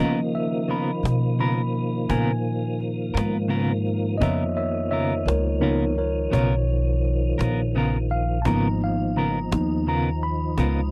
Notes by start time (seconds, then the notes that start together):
Already playing: C#3 D#3 F3 A#3
0.00 C#3 A#3 B3 C#4 F4 A#4 D#5
0.33 E5, cajon slap
0.68 C#3 B3 F4 A#4 B5, cajon slap
1.03 B2, cajon slap
1.39 C#3 B3 F4 A#4 B5, cajon slap
1.75 cajon slap
2.09 A#2 C#3 B3 F4 A#4 G#5, cajon bass
2.45 cajon slap
2.81 cajon slap
3.14 G#2 B3 F4 A#4, cajon slap
3.48 C#3 B3 F4 A#4, cajon slap
3.87 cajon slap
4.18 F2 C#3 D#3 F3 A#3 B3 D#5
4.22 F4 A#4 C#5 E5, cajon bass
4.57 C#5 E5, cajon slap
4.91 C#3 B3 F4 A#4 C#5 E5, cajon slap
5.26 C#2 A#4 C#5, cajon slap
5.60 C#3 F3 A#3 B3 D#4 F4 A#4 C#5, cajon slap
5.98 A#4 C#5, cajon slap
6.31 B1 C#3 B3 F4 A#4 C#5, cajon bass
6.69 cajon slap
7.05 cajon slap
7.38 A#1 B3 F4 A#4, cajon slap
7.75 C#3 B3 F4 A#4, cajon slap
8.10 F5, cajon slap
8.42 G#1 C#3 F3 A#3 B3 D#4 F4 A5, cajon bass
8.46 B3 D#4 A#4 A#5
8.81 F5, cajon slap
9.16 C#3 B3 F4 A#4 A#5, cajon slap
9.52 D#2 F3 A#3 B3 D#4, cajon slap
9.86 C#3 B3 F4 A#4 A#5, cajon slap
10.22 B5, cajon slap
10.57 C#2 C#3 B3 F4 A#4, cajon bass